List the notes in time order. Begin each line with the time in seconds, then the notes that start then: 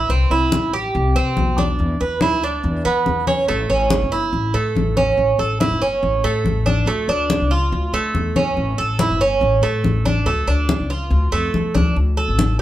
0.09 C2 C4, high conga
0.30 C2 E4, high conga
0.52 high conga
0.63 A1
0.73 G4, high conga
0.95 C2, high conga
1.15 C3 C4, high conga
1.37 B1, high conga
1.58 D4, high conga
1.79 E2, high conga
2.00 E2 B4, high conga
2.21 E4, high conga
2.32 D2
2.42 D4, high conga
2.64 E2, high conga
2.85 E3 B3, high conga
3.06 E2, high conga
3.27 C#4, high conga
3.48 A1 A3, high conga
3.70 A1 C#4, high conga
3.90 high conga
4.01 G1
4.12 E4, high conga
4.33 A1, high conga
4.54 A2 A3, high conga
4.75 A1, high conga
4.97 C#4, high conga
5.17 A1, high conga
5.38 A1 A4, high conga
5.60 E4, high conga
5.71 G1
5.82 C#4, high conga
6.03 A1, high conga
6.24 A2 A3, high conga
6.45 A1, high conga
6.66 D4, high conga
6.86 D2 A3, high conga
7.08 D2 D4, high conga
7.30 high conga
7.40 C#2
7.51 F4, high conga
7.72 D2, high conga
7.93 D3 A3, high conga
8.15 E2, high conga
8.36 C#4, high conga
8.57 A1, high conga
8.78 A1 A4, high conga
8.99 E4, high conga
9.10 G1
9.21 C#4, high conga
9.41 A1, high conga
9.62 A2 A3, high conga
9.84 A1, high conga
10.05 D4, high conga
10.26 D2 A3, high conga
10.47 D2 D4, high conga
10.69 high conga
10.79 C#2
10.90 F4, high conga
11.10 D2, high conga
11.32 F2 A3, high conga
11.54 E2, high conga
11.74 D2 D4, high conga
11.96 D2, high conga
12.17 A4, high conga
12.28 A1
12.39 high conga